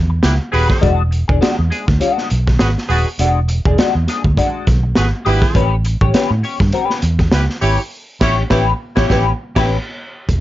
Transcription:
Already playing: E2
0.10 muted clean electric guitar stroke
0.23 C#2 E4 G4 B4, muted clean electric guitar stroke, snare, closed hi-hat
0.52 D#1 C#4 F#4 G4 G#4 B4, open hi-hat
0.69 muted clean electric guitar stroke, kick, snare
0.81 E1 G#3 D4 F#4, kick, closed hi-hat
1.11 muted clean electric guitar stroke, closed hi-hat
1.28 E1 G#3 D4 G#4, kick
1.41 G#3 D4 F#4, muted fingered electric bass stroke, snare, closed hi-hat
1.58 E2, muted clean electric guitar stroke
1.70 G#3 D4 G#4, closed hi-hat
1.87 D2, muted clean electric guitar stroke, kick, snare
2.00 G3 C#4 F4, closed hi-hat
2.12 G#3 D4 F#4
2.18 snare
2.30 B1, muted clean electric guitar stroke, closed hi-hat
2.47 muted clean electric guitar stroke, kick, snare
2.59 G#1 F#4 G#4 B4, muted clean electric guitar stroke, snare, closed hi-hat
2.78 snare
2.89 D#1 G#3 D4 F#4 G#4 B4, open hi-hat
3.07 muted clean electric guitar stroke
3.19 E1 G#3 D4 F#4, closed hi-hat
3.48 muted clean electric guitar stroke, closed hi-hat
3.65 E1 G#3 D4 G#4, kick
3.78 G#3 D4 F#4, muted fingered electric bass stroke, snare, closed hi-hat
3.95 E2, muted clean electric guitar stroke
4.08 G#3 D4 G#4, snare, closed hi-hat
4.24 D2, muted clean electric guitar stroke, kick
4.37 G#3 D4 F#4, kick, closed hi-hat
4.67 B1, muted clean electric guitar stroke, kick, snare, closed hi-hat
4.83 muted clean electric guitar stroke
4.95 G#1 F#4 G#4 B4, muted clean electric guitar stroke, snare, closed hi-hat
5.25 G#1 G#3 D4 E4 F#4 G4 B4, open hi-hat
5.42 muted clean electric guitar stroke, kick, snare
5.55 A1 C#4 G4 B4, kick, closed hi-hat
5.84 muted clean electric guitar stroke, closed hi-hat
6.01 A1 C#4 G4 C#5, kick
6.14 C#4 G4 B4, muted fingered electric bass stroke, snare, closed hi-hat
6.31 A2, muted clean electric guitar stroke
6.43 C#4 G4 C#5, open hi-hat
6.60 G2, muted clean electric guitar stroke, kick, snare
6.72 C4 F#4 A#4, closed hi-hat
6.85 C#4 G4 B4
6.90 snare
7.02 E2, muted clean electric guitar stroke, closed hi-hat
7.19 muted clean electric guitar stroke, kick, snare
7.32 C#2 E4 G4 B4, muted clean electric guitar stroke, snare, closed hi-hat
7.50 snare
7.61 G#1 C#4 E4 G4 B4 C#5, open hi-hat
7.79 muted clean electric guitar stroke
8.20 A1 C#4 E4 G4 C#5, kick, snare, crash
8.50 A1 C#4 E4 G4 B4 C#5, kick, snare
8.96 A1 C#4 E4 G4 C#5, kick, snare
9.08 A1 C#4 E4 G4 B4 C#5, kick, snare
9.56 A1 C#4 E4 G4 B4 C#5, kick, snare, crash
10.29 E1, kick, closed hi-hat

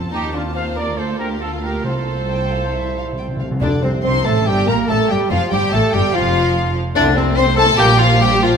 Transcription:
Already playing: F1 F2 C4 F4 A5
0.11 D#2 D#4 G4
0.33 D4 F4
0.54 C5 F5
0.75 A#4 D5
0.96 D2 A#3 A4 C5 F5
1.18 G4 A#4
1.40 F4 A4
1.62 G4 A#4
1.84 C2 C3 A3 A4 C5
2.29 G5
2.51 F5
2.73 C3 G3 E4 E5
2.82 C3
2.98 C3 F5
3.06 C3
3.13 C3
3.18 C3 G5
3.28 C3
3.36 C3 F5
3.44 C3
3.51 C3
3.61 D2 F2 D3 D4 D5
3.82 C2 C3 C4 C5
4.03 C2 C3 C4 C5 C6
4.25 A1 A2 A3 A4 A5
4.46 G1 G2 G3 G4 G5
4.67 A#1 A#2 A#3 A#4 A#5
4.87 A1 A2 A3 A4 A5
5.09 G1 G2 G3 G4 G5
5.30 F1 F2 F3 F4 F5
5.51 G1 G2 G3 G4 G5
5.72 A1 A2 A3 A4 A5
5.92 G1 G2 G3 G4 G5
6.13 F1 F2 F3 F4 F5
6.95 C2 C3 D3 A3 C4 D4 E4 D5 A6
7.06 A3 C4
7.15 C3 C4 E4 C5
7.27 A3 C4
7.37 C4 E4 C5 C6
7.48 A3 C4
7.57 A3 C4 E4 A4 A5
7.68 A3 C4
7.77 A#1 A#2 F3 G3 A#3 F4 G4 G5 G6
7.89 G3 G4
7.99 F3 F4 F5
8.11 G3 G4
8.20 F3 G3 F4 G4 G5
8.31 G3 G4
8.42 F3 F4 F5
8.53 G3 G4

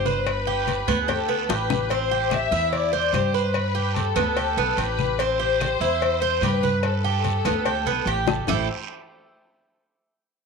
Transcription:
Already playing: G1 C5
0.05 B4, high conga, short guiro
0.26 B4, cowbell, high conga, long guiro, claves
0.47 G4, high conga
0.67 cowbell, high conga, short guiro
0.88 D2 B3, cowbell, high conga, low conga, short guiro, claves
1.03 G#4
1.08 G4 A4, cowbell, high conga, low conga, long guiro
1.28 B3, high conga
1.49 A1 G4 B4, cowbell, high bongo, high conga, short guiro
1.70 low bongo, high conga, short guiro, claves
1.90 C4 C5, cowbell, high conga, long guiro
2.11 G4, high conga
2.31 E5, cowbell, high conga, short guiro, claves
2.51 E2 E4, high conga, short guiro
2.72 D5, cowbell, high conga, long guiro
2.93 C5, high conga
3.13 G2 G4 C5, cowbell, high conga, short guiro, claves
3.34 B4, short guiro
3.54 B4, cowbell, high conga, long guiro, claves
3.75 G4, high conga
3.95 A4, cowbell, high conga, short guiro
4.16 D2 B3, cowbell, high conga, low conga, short guiro, claves
4.37 G4, cowbell, high conga, long guiro
4.57 B1 B3, high conga
4.77 A1 G4 B4, cowbell, high conga, short guiro
4.99 high conga, short guiro, claves
5.18 C4 C5, cowbell, high conga, long guiro
5.39 G4, high conga
5.60 cowbell, high conga, short guiro, claves
5.80 E2 E4, high conga, short guiro
6.01 cowbell, high conga, long guiro
6.22 C5, high conga
6.41 G2 G4 B4, cowbell, high conga, short guiro, claves
6.63 B4, high conga, short guiro
6.83 A4, cowbell, high conga, long guiro, claves
7.04 G4, high conga
7.24 cowbell, high conga, short guiro
7.45 D2 B3, cowbell, high conga, low conga, short guiro, claves
7.65 G4, cowbell, high conga, long guiro
7.86 B1 B3, high conga
8.06 A1 G4, cowbell, high conga, short guiro
8.27 A4, high bongo, high conga, short guiro, claves
8.47 A1 A3 E4 G4 C5, low bongo, low conga, long guiro, claves

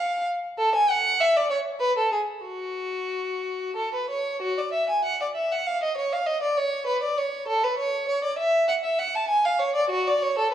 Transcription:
Already playing: F5
0.58 A4
0.75 G#5
0.90 F#5
1.21 E5
1.36 D5
1.50 C#5
1.80 B4
1.98 A4
2.12 G#4
2.45 F#4
3.76 A4
3.94 B4
4.10 C#5
4.42 F#4
4.58 D5
4.73 E5
4.89 G#5
5.04 F#5
5.21 D5
5.35 E5
5.52 F#5
5.67 F5
5.83 D#5
5.97 C#5
6.13 F5
6.26 D#5
6.42 D5
6.57 C#5
6.86 B4
7.03 D5
7.17 C#5
7.48 A4
7.63 B4
7.78 C#5
8.08 C#5
8.24 D5
8.38 E5
8.68 F#5
8.84 E5
8.99 F#5
9.15 A5
9.28 G#5
9.45 F5
9.59 C#5
9.75 D5
9.90 F#4
10.07 D5
10.22 C#5
10.38 A4

